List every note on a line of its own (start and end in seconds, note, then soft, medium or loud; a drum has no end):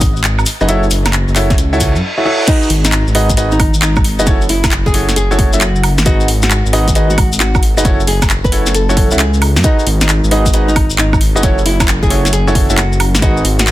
0.00 0.13 G#1 medium
0.00 kick loud
0.00 open hi-hat loud
0.00 maracas medium
0.16 0.45 G#1 medium
0.16 maracas soft
0.24 clap loud
0.24 closed hi-hat medium
0.24 maracas soft
0.39 high woodblock medium
0.39 maracas soft
0.46 open hi-hat loud
0.46 maracas medium
0.61 0.89 F#1 loud
0.61 0.67 D#4 medium
0.61 0.67 F#4 medium
0.61 0.67 G#4 medium
0.61 0.67 B4 medium
0.61 0.67 D#5 loud
0.61 maracas soft
0.68 0.83 E4 loud
0.68 0.83 F#4 medium
0.68 0.83 A4 medium
0.68 0.83 C#5 medium
0.68 0.83 E5 loud
0.68 closed hi-hat medium
0.68 maracas soft
0.83 maracas soft
0.91 1.25 F#1 loud
0.91 open hi-hat loud
0.91 maracas medium
1.05 snare medium
1.05 closed hi-hat medium
1.05 high woodblock medium
1.05 maracas soft
1.12 clap loud
1.12 closed hi-hat medium
1.12 maracas soft
1.28 1.56 F#1 medium
1.28 maracas soft
1.36 1.55 E4 medium
1.36 1.55 F#4 medium
1.36 1.55 A4 medium
1.36 1.55 C#5 medium
1.36 1.55 E5 medium
1.36 clap medium
1.36 open hi-hat loud
1.36 maracas medium
1.50 kick loud
1.50 snare soft
1.50 closed hi-hat soft
1.50 maracas soft
1.58 1.97 C#2 medium
1.58 closed hi-hat medium
1.58 reverse cymbal medium
1.58 maracas soft
1.73 1.92 E4 loud
1.73 1.92 F#4 medium
1.73 1.92 A4 medium
1.73 1.92 C#5 medium
1.73 1.92 E5 loud
1.73 maracas soft
1.80 kick medium
1.80 open hi-hat loud
1.80 maracas medium
1.95 2.02 F#2 medium
1.95 maracas soft
2.18 2.23 E4 medium
2.18 2.23 F#4 medium
2.18 2.23 A4 medium
2.18 2.23 C#5 medium
2.18 2.23 E5 medium
2.25 2.46 E4 medium
2.25 2.46 F#4 medium
2.25 2.46 A4 medium
2.25 2.46 C#5 medium
2.25 2.46 E5 loud
2.47 2.67 D#4 medium
2.47 2.69 D#4 loud
2.47 2.67 F#4 medium
2.47 2.67 G#4 medium
2.47 2.67 B4 medium
2.47 2.67 D#5 loud
2.47 kick loud
2.47 closed hi-hat medium
2.47 crash loud
2.47 maracas medium
2.63 maracas soft
2.70 3.04 G#1 loud
2.70 open hi-hat loud
2.85 3.05 D#4 medium
2.85 snare medium
2.85 closed hi-hat medium
2.85 maracas medium
2.92 clap loud
2.92 closed hi-hat medium
2.92 maracas medium
3.07 3.36 G#1 loud
3.07 maracas soft
3.15 3.29 D#4 loud
3.15 3.29 F#4 medium
3.15 3.29 G#4 medium
3.15 3.29 B4 medium
3.15 3.29 D#5 loud
3.15 open hi-hat loud
3.29 kick medium
3.29 closed hi-hat soft
3.29 maracas medium
3.37 3.71 G#1 medium
3.37 3.56 D#4 medium
3.37 3.56 F#4 medium
3.37 3.56 G#4 medium
3.37 3.56 B4 medium
3.37 3.56 D#5 medium
3.37 closed hi-hat medium
3.37 maracas medium
3.51 3.72 D#4 loud
3.51 maracas soft
3.60 kick loud
3.60 open hi-hat loud
3.60 high woodblock medium
3.74 4.21 G#1 medium
3.74 maracas medium
3.82 4.03 D#4 medium
3.82 clap loud
3.82 closed hi-hat medium
3.82 maracas medium
3.96 kick loud
3.96 high woodblock medium
3.96 maracas soft
4.04 open hi-hat loud
4.19 4.48 F#1 medium
4.19 4.25 D#4 medium
4.19 4.25 F#4 medium
4.19 4.25 G#4 medium
4.19 4.25 B4 medium
4.19 4.25 D#5 loud
4.19 maracas medium
4.26 4.41 C#4 loud
4.26 4.41 E4 medium
4.26 4.41 F#4 medium
4.26 4.41 A4 medium
4.26 4.41 C#5 loud
4.26 kick loud
4.26 closed hi-hat medium
4.26 maracas medium
4.41 maracas soft
4.49 4.83 F#1 loud
4.49 4.71 E4 medium
4.49 open hi-hat loud
4.64 kick loud
4.64 snare medium
4.64 closed hi-hat medium
4.64 high woodblock medium
4.64 maracas medium
4.71 clap loud
4.71 closed hi-hat medium
4.71 maracas medium
4.86 5.15 F#1 loud
4.86 5.06 G#4 medium
4.86 kick medium
4.86 maracas soft
4.94 5.13 C#4 medium
4.94 5.13 E4 medium
4.94 5.13 F#4 medium
4.94 5.13 A4 medium
4.94 5.13 C#5 medium
4.94 open hi-hat loud
5.09 snare soft
5.09 closed hi-hat soft
5.09 maracas medium
5.16 5.50 F#1 medium
5.16 5.46 G#4 medium
5.16 closed hi-hat medium
5.16 maracas medium
5.31 5.50 C#4 loud
5.31 5.50 E4 medium
5.31 5.50 F#4 medium
5.31 5.50 A4 medium
5.31 5.50 C#5 loud
5.31 maracas soft
5.39 kick loud
5.39 open hi-hat loud
5.53 6.00 F#1 medium
5.53 5.61 C#4 medium
5.53 5.61 E4 medium
5.53 5.61 F#4 medium
5.53 5.61 A4 medium
5.53 5.61 E5 loud
5.53 maracas medium
5.61 5.90 F#4 medium
5.61 clap loud
5.61 closed hi-hat medium
5.61 maracas medium
5.76 maracas soft
5.83 open hi-hat loud
5.83 high woodblock medium
5.98 6.27 G#1 medium
5.98 snare medium
5.98 maracas medium
6.06 6.25 D#4 medium
6.06 6.27 F#4 loud
6.06 6.25 F#4 medium
6.06 6.25 G#4 medium
6.06 6.25 B4 medium
6.06 6.25 D#5 loud
6.06 kick loud
6.06 closed hi-hat medium
6.06 maracas medium
6.20 maracas soft
6.28 6.62 G#1 loud
6.28 open hi-hat loud
6.42 6.63 F#4 medium
6.42 snare medium
6.42 closed hi-hat medium
6.42 maracas medium
6.51 clap loud
6.51 closed hi-hat medium
6.51 maracas medium
6.65 6.94 G#1 medium
6.65 maracas soft
6.73 6.88 D#4 loud
6.73 6.88 F#4 medium
6.73 6.88 G#4 medium
6.73 6.88 B4 medium
6.73 6.88 D#5 loud
6.73 open hi-hat loud
6.88 kick medium
6.88 closed hi-hat soft
6.88 maracas medium
6.95 7.29 G#1 medium
6.95 7.15 D#4 medium
6.95 7.15 F#4 medium
6.95 7.15 G#4 medium
6.95 7.15 B4 medium
6.95 7.15 D#5 medium
6.95 closed hi-hat medium
6.95 maracas medium
7.10 7.30 F#4 loud
7.10 maracas soft
7.18 kick loud
7.18 open hi-hat loud
7.18 high woodblock medium
7.32 7.79 G#1 medium
7.32 maracas medium
7.40 7.62 F#4 medium
7.40 clap loud
7.40 closed hi-hat medium
7.40 maracas medium
7.55 kick loud
7.55 high woodblock medium
7.55 maracas soft
7.63 open hi-hat loud
7.77 8.06 F#1 medium
7.77 7.83 D#4 medium
7.77 7.83 F#4 medium
7.77 7.83 G#4 medium
7.77 7.83 B4 medium
7.77 7.83 D#5 loud
7.77 maracas medium
7.85 7.99 C#4 loud
7.85 8.00 E4 medium
7.85 7.99 F#4 medium
7.85 7.99 A4 medium
7.85 7.99 C#5 loud
7.85 kick loud
7.85 closed hi-hat medium
8.00 maracas soft
8.07 8.41 F#1 loud
8.07 8.29 G#4 medium
8.07 open hi-hat loud
8.22 kick loud
8.22 snare medium
8.22 closed hi-hat medium
8.22 high woodblock medium
8.22 maracas medium
8.30 clap loud
8.30 closed hi-hat medium
8.30 maracas medium
8.44 8.73 F#1 medium
8.44 8.65 B4 loud
8.44 kick medium
8.44 maracas soft
8.52 8.71 C#4 medium
8.52 8.71 E4 medium
8.52 8.71 F#4 medium
8.52 8.71 A4 medium
8.52 8.71 C#5 medium
8.52 open hi-hat loud
8.66 snare soft
8.66 closed hi-hat soft
8.66 maracas medium
8.74 9.13 F#1 medium
8.74 9.04 A4 medium
8.74 closed hi-hat medium
8.74 maracas medium
8.89 9.08 C#4 loud
8.89 9.08 E4 medium
8.89 9.08 F#4 medium
8.89 9.08 A4 medium
8.89 9.08 C#5 loud
8.89 maracas soft
8.97 kick loud
8.97 open hi-hat loud
9.11 9.58 C#2 medium
9.11 9.19 C#4 medium
9.11 9.19 E4 medium
9.11 9.19 F#4 medium
9.11 9.19 A4 medium
9.11 9.19 E5 loud
9.11 maracas medium
9.18 9.49 G#4 loud
9.18 clap loud
9.18 closed hi-hat medium
9.18 maracas medium
9.34 maracas soft
9.42 open hi-hat loud
9.42 high woodblock medium
9.56 9.63 F#2 loud
9.56 snare medium
9.56 maracas medium
9.63 9.83 D#4 medium
9.63 9.85 D#4 medium
9.63 9.83 F#4 medium
9.63 9.83 G#4 medium
9.63 9.83 B4 medium
9.63 9.83 D#5 loud
9.63 kick loud
9.63 closed hi-hat medium
9.63 maracas medium
9.79 maracas soft
9.86 10.20 G#1 loud
9.86 open hi-hat loud
10.01 10.22 D#4 medium
10.01 snare medium
10.01 closed hi-hat medium
10.01 maracas medium
10.09 clap loud
10.09 closed hi-hat medium
10.09 maracas medium
10.24 10.52 G#1 medium
10.24 maracas soft
10.31 10.46 D#4 loud
10.31 10.46 F#4 medium
10.31 10.46 G#4 medium
10.31 10.46 B4 medium
10.31 10.46 D#5 loud
10.31 open hi-hat loud
10.46 kick medium
10.46 closed hi-hat soft
10.46 maracas medium
10.53 10.88 G#1 loud
10.53 10.73 D#4 medium
10.53 10.73 F#4 medium
10.53 10.73 G#4 medium
10.53 10.73 B4 medium
10.53 10.73 D#5 medium
10.53 closed hi-hat medium
10.53 maracas medium
10.68 10.89 D#4 medium
10.68 maracas soft
10.76 kick loud
10.76 open hi-hat loud
10.76 high woodblock medium
10.90 11.37 G#1 medium
10.90 maracas medium
10.98 11.20 D#4 medium
10.98 clap loud
10.98 closed hi-hat medium
10.98 maracas medium
11.13 kick loud
11.13 high woodblock medium
11.13 maracas soft
11.21 open hi-hat loud
11.36 11.64 F#1 medium
11.36 11.41 D#4 medium
11.36 11.41 F#4 medium
11.36 11.41 G#4 medium
11.36 11.41 B4 medium
11.36 11.41 D#5 loud
11.36 maracas medium
11.43 11.58 C#4 loud
11.43 11.58 E4 medium
11.43 11.58 F#4 loud
11.43 11.58 A4 medium
11.43 11.58 C#5 loud
11.43 kick loud
11.43 closed hi-hat medium
11.43 maracas medium
11.58 maracas soft
11.66 12.00 F#1 loud
11.66 11.87 E4 medium
11.66 open hi-hat loud
11.80 kick loud
11.80 snare medium
11.80 closed hi-hat medium
11.80 high woodblock medium
11.80 maracas medium
11.88 clap loud
11.88 closed hi-hat medium
11.88 maracas medium
12.03 12.31 F#1 medium
12.03 12.23 G#4 loud
12.03 kick medium
12.03 maracas soft
12.10 12.30 C#4 medium
12.10 12.30 E4 medium
12.10 12.30 F#4 medium
12.10 12.30 A4 medium
12.10 12.30 C#5 medium
12.10 open hi-hat loud
12.25 snare soft
12.25 closed hi-hat soft
12.25 maracas medium
12.33 12.67 F#1 loud
12.33 12.62 G#4 medium
12.33 closed hi-hat medium
12.33 maracas medium
12.47 12.66 C#4 loud
12.47 12.66 E4 medium
12.47 12.66 F#4 medium
12.47 12.66 A4 medium
12.47 12.66 C#5 loud
12.47 maracas soft
12.55 kick loud
12.55 open hi-hat loud
12.70 13.16 F#1 medium
12.70 12.77 C#4 medium
12.70 12.77 E4 medium
12.70 12.77 F#4 medium
12.70 12.77 A4 medium
12.70 12.77 E5 loud
12.70 maracas medium
12.77 13.07 F#4 medium
12.77 clap loud
12.77 closed hi-hat medium
12.77 maracas medium
12.93 maracas soft
13.00 open hi-hat loud
13.00 high woodblock medium
13.15 13.43 G#1 medium
13.15 snare medium
13.15 maracas medium
13.22 13.41 D#4 medium
13.22 13.41 F#4 medium
13.22 13.44 F#4 loud
13.22 13.41 G#4 medium
13.22 13.41 B4 medium
13.22 13.41 D#5 loud
13.22 kick loud
13.22 closed hi-hat medium
13.22 maracas medium
13.37 maracas soft
13.45 13.71 G#1 loud
13.45 open hi-hat loud
13.59 13.71 F#4 loud
13.59 snare medium
13.59 closed hi-hat medium
13.59 maracas medium
13.67 clap loud
13.67 closed hi-hat medium
13.67 maracas medium